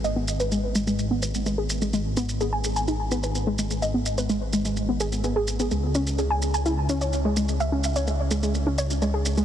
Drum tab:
SH |x-xxx-xxx-xxx-xx|x-xxx-xxx-xxx-xx|x-xxx-xxx-xxx-xx|x-xxx-xxx-xxx-xx|

SH |x-xxx-xxx-xxx-xx|